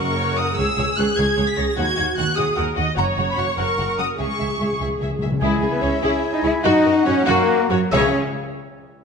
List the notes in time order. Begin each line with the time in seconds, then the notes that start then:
Already playing: F#1 F#2 A#4 F#5 C#6
0.17 F#4 C#5
0.38 A#4 F#5 D#6
0.57 C#2 C#3 G#4 C#5 E6
0.77 C#2 G#4 C#5
0.97 C#2 G#4 C#5 F#6
1.17 C#2 G#4 C#5 G#6
1.38 C#2 G#4 C#5
1.48 B6
1.57 C#2 G#4 C#5 A#6
1.77 D#2 F#4 F#5 G#6
1.97 D#2 F#4 F#5
2.17 D#2 F#4 F#5 F#6
2.37 D#2 F#4 G#4 F#5 D#6
2.56 D#2 F#4 A#4 F#5
2.76 D#2 F#4 D#5 F#5
2.96 F#1 F#2 F#4 C#5 F#5 A#5
3.17 F#1 F#2 F#4 F#5
3.30 B5
3.37 F#1 F#2 F#4 F#5 C#6
3.57 F#1 F#2 F#4 A#4 F#5 C#6
3.77 F#1 F#2 F#4 F#5
3.97 F#1 F#2 F#4 F#5 D#6
4.18 C#2 C#3 G#4 E5 C#6
4.36 C#2 C#3 G#4 E5
4.40 C#2 C#3
4.51 C#3
4.58 C#2 C#3 G#4 E5
4.65 C#3
4.73 C#3
4.80 C#2 C#3 G#4 E5
4.88 C#3
4.96 C#3
5.01 C#2 C#3 G#4 E5
5.11 C#3
5.18 C#2 C#3 G#4 E5
5.26 C#3
5.32 C#3
5.40 C#2 C#3 G#3 E4 G#4 E5 G#5
5.61 C#2 G#4
5.71 B3 B4
5.81 C#2 C#4 G#4 C#5
6.02 C#2 C#4 E4 G#4 C#5 G#5
6.33 D#4 D#5
6.43 C#2 E4 G#4 C#5 E5
6.63 F#2 D#4 F#4 D#5 F#5
6.85 F#2 F#4 A#4
7.06 F#2 C#4 F#4 C#5
7.25 F#2 A#3 F#4 A#4 F#5
7.69 F#2 F#3 F#4 C#5
7.91 C#2 C#3 C#4 G#4 C#5 E5